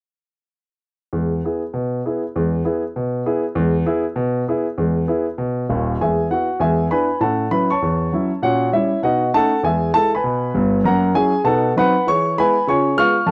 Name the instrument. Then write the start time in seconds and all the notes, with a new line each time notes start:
grand piano
1.13 E2 G#3
1.45 B3 E4 G#4
1.74 B2
2.06 B3 E4 G#4
2.36 E2 G#3
2.65 B3 E4 G#4
2.96 B2
3.26 B3 E4 G#4
3.55 E2 G#3
3.86 B3 E4 G#4
4.16 B2
4.48 B3 E4 G#4
4.78 E2 G#3
5.08 B3 E4 G#4
5.38 B2
5.70 D#1 D#2
6.01 E2 G#3 G#4 E5 G#5
6.31 B3 E4 F#4 F#5
6.60 E2 G#3 G#4 E5 G#5
6.90 B3 D4 E4 B4 G#5 B5
7.20 A2 C#4 A4 F#5 A5
7.51 F#3 C#4 E4 B4 B5
7.70 C#5 A5 C#6
7.82 E2
8.12 F#3 C#4 E4
8.42 A#2 C#4 F#4 C#5 F#5
8.73 G3 C#4 E4 C#5 E5
9.03 B2 D#4 F#4 D#5 F#5
9.33 A3 C#4 D#4 A4 F#5 A5
9.63 E2 G#3 G#4 E5 G#5
9.94 G#3 E4 A4 A5
10.15 B4 G#5 B5
10.24 B2
10.55 G1 G2
10.84 F#2 A#3 A#4 F#5 A#5
11.14 F#3 C#4 E4 G#4 G#5
11.44 B2 D#4 A4 F#5 A5
11.76 F#3 C4 D#4 B4 F#5 B5
12.07 E3 G#4 C#5 C#6
12.37 G#3 B3 E4 B4 G#5 B5
12.67 C#3 F4 C#5 G#5 C#6
12.97 G#3 B3 F4 F5 C#6 F6
13.26 F#2 A3 F#5 A5